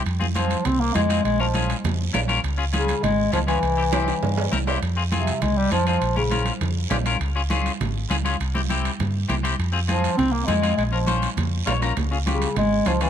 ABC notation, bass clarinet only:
X:1
M:4/4
L:1/8
Q:1/4=202
K:Fm
V:1 name="Bass clarinet" clef=bass
z2 F,2 C B, A,2 | A, F,2 z4 z | z2 D,2 A,2 F, =E,- | =E,6- E, z |
z2 C,2 A, G, F, F,- | F, D,2 z4 z | z8 | z8 |
z2 F,2 C B, A,2 | A, F,2 z4 z | z2 D,2 A,2 F, =E, |]